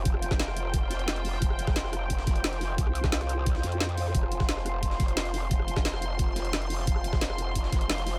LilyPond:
<<
  \new Staff \with { instrumentName = "Analog synth pad" } { \time 4/4 \key c \phrygian \tempo 4 = 176 << { g''1~ | g''1~ | g''1 | c'''1~ |
c'''1~ | c'''1 | } \\ { <f' c''>1~ | <f' c''>1~ | <f' c''>1~ | <f' c''>1~ |
<f' c''>1~ | <f' c''>1 | } >> }
  \new Staff \with { instrumentName = "Wobble bass" } { \clef bass \time 4/4 \key c \phrygian f,,1 | f,,1 | c,2~ c,8 f,4. | f,,1 |
f,,1 | f,,1 | }
  \new DrumStaff \with { instrumentName = "Drums" } \drummode { \time 4/4 <hh bd>16 ss16 hh16 <bd ss sn>16 <hh sn>16 <ss sn>16 hh8 <hh bd>8 <hh sn>16 hh16 <hh sn>16 hh16 <hh hho>16 sn16 | <hh bd>16 ss16 hh16 <bd ss sn>16 <hh sn>16 <ss sn>16 <hh ss>8 <hh bd>16 sn16 <hh bd sn>16 hh16 <hh hho sn>16 <hh sn>16 <hh hho sn>8 | <hh bd>16 ss16 hh16 <bd ss sn>16 <hh sn>16 <hh ss sn>16 hh8 <hh bd>16 sn16 <hh sn>16 hh16 <hh sn>16 hh16 <hh hho>16 sn16 | <hh bd>16 ss16 hh16 <bd ss sn>16 <hh sn>16 <ss sn>16 <hh ss>8 <hh bd>16 sn16 <hh bd sn>16 hh16 <hh hho sn>16 <hh sn>16 <hh hho sn>8 |
<hh bd>16 ss16 hh16 <bd ss sn>16 <hh sn>16 <ss sn>16 hh8 <hh bd>8 <hh sn>16 hh16 <hh sn>16 hh16 <hh hho>16 sn16 | <hh bd>16 ss16 hh16 <bd ss sn>16 <hh sn>16 <ss sn>16 hh8 <hh bd>16 sn16 <hh bd sn>16 hh16 <hh hho sn>16 <hh sn>16 <hh hho sn>8 | }
>>